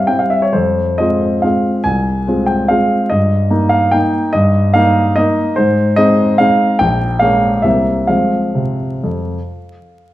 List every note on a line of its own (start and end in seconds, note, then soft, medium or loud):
0.07 0.52 G3 soft
0.07 0.52 C4 soft
0.07 0.53 E4 soft
0.07 0.20 G5 medium
0.19 0.32 F5 medium
0.30 0.44 E5 medium
0.42 0.55 C#5 medium
0.53 0.99 F2 soft
0.53 0.99 C5 medium
0.98 1.40 G#3 soft
0.98 1.40 C4 soft
0.98 1.40 F4 soft
0.98 1.43 D#5 medium
1.42 1.81 G#3 soft
1.42 1.81 C4 soft
1.42 1.81 F4 soft
1.42 1.84 F5 medium
1.84 2.25 C2 soft
1.84 2.47 G#5 medium
2.27 2.66 G#3 soft
2.27 2.66 C4 soft
2.27 2.66 F4 soft
2.46 2.69 G5 medium
2.68 3.07 G#3 soft
2.68 3.07 C4 soft
2.68 3.08 F4 soft
2.68 3.10 F5 medium
3.10 3.50 G2 soft
3.10 3.71 D#5 medium
3.50 3.89 A#3 soft
3.50 3.89 D#4 soft
3.69 3.92 F5 medium
3.91 4.30 A#3 soft
3.91 4.30 D#4 soft
3.91 4.33 G5 medium
4.33 4.73 G2 medium
4.33 4.74 D#5 medium
4.74 5.12 A#3 soft
4.74 5.13 D#4 soft
4.74 5.16 F5 medium
5.16 5.53 A#3 soft
5.16 5.53 D#4 soft
5.16 5.56 D#5 medium
5.56 5.96 G#2 medium
5.56 5.97 C5 medium
5.96 6.35 G#3 soft
5.96 6.35 C4 soft
5.96 6.35 D#4 soft
5.96 6.38 D#5 medium
6.38 6.76 G#3 soft
6.38 6.76 C4 soft
6.38 6.76 D#4 soft
6.38 6.79 F5 medium
6.79 7.19 A#1 soft
6.79 7.20 G5 medium
7.19 7.60 G#3 soft
7.19 7.60 A#3 soft
7.19 7.60 C#4 soft
7.19 7.63 F5 medium
7.62 8.07 C2 soft
7.62 8.05 G3 soft
7.62 8.05 A#3 soft
7.62 8.05 C4 soft
7.62 8.08 E5 medium
8.07 8.41 F3 soft
8.07 8.46 G#3 soft
8.07 8.46 C4 soft
8.07 10.14 F5 medium
8.55 8.89 C3 soft
9.04 9.37 F2 soft